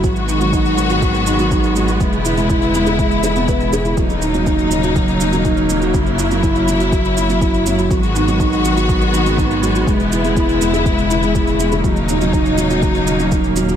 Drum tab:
SH |xxxxxxxxxxxxxxxx|xxxxxxxxxxxxxxxx|xxxxxxxxxxxxxxxx|xxxxxxxxxxxxxxxx|
BD |o---o---o---o---|o---o---o---o---|o---o---o---o---|o---o---o---o---|

SH |xxxxxxxxxxxxxxxx|xxxxxxxxxxxxxxxx|xxxxxxxxxxxxxxxx|
BD |o---o---o---o---|o---o---o---o---|o---o---o---o---|